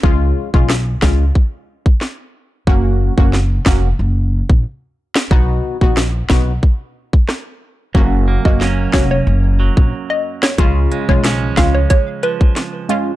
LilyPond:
<<
  \new Staff \with { instrumentName = "Synth pluck" } { \time 4/4 \key fis \major \tempo 4 = 91 r1 | r1 | r1 | r8. dis''16 r8 cis''16 cis''16 r4 r16 dis''16 r16 cis''16 |
r8. cis''16 r8 eis''16 cis''16 cis''16 r16 b'16 r4 r16 | }
  \new Staff \with { instrumentName = "Synth stab" } { \time 4/4 \key fis \major <gis cis' eis'>8. <gis cis' eis'>16 r8 <gis cis' eis'>16 r2 r16 | <ais cis' fis'>8. <ais cis' fis'>16 r8 <ais cis' fis'>16 r2 r16 | <b dis' fis'>8. <b dis' fis'>16 r8 <b dis' fis'>16 r2 r16 | <ais cis' fis'>8. <ais cis' fis'>16 r8 <ais cis' fis'>16 r2 r16 |
<gis cis' eis'>8. <gis cis' eis'>16 r8 <gis cis' eis'>16 r4. r16 <gis cis' eis'>16 r16 | }
  \new Staff \with { instrumentName = "Clean electric guitar" } { \clef bass \time 4/4 \key fis \major r1 | r1 | r1 | fis,8 ais8 <fis ais cis'>4. fis4. |
cis8 gis8 <eis gis cis'>4. eis4. | }
  \new Staff \with { instrumentName = "Upright bass" } { \clef bass \time 4/4 \key fis \major cis,8 r16 b,,8. cis,8 r2 | fis,,8. fis,,8. eis,,8 fis,,8. ais,,16 r4 | b,,8 r16 ais,,8. b,,8 r2 | fis,,8. fis,,8. eis,,8 fis,,8. ais,,16 r4 |
cis,8 r16 b,,8. cis,8 r2 | }
  \new DrumStaff \with { instrumentName = "Drums" } \drummode { \time 4/4 bd8. bd16 sn8 <bd sn>8 bd8. bd16 sn4 | bd8. bd16 sn8 <bd sn>8 r8. bd16 r8. sn16 | bd8. bd16 sn8 <bd sn>8 bd8. bd16 <ss sn>4 | bd8. bd16 sn8 <bd sn>8 r8. bd16 r8. sn16 |
<hh bd>8 hh16 bd16 <hh sn>8 <hh bd sn>8 <hh bd>8 hh16 bd16 <hh sn>8 hh8 | }
>>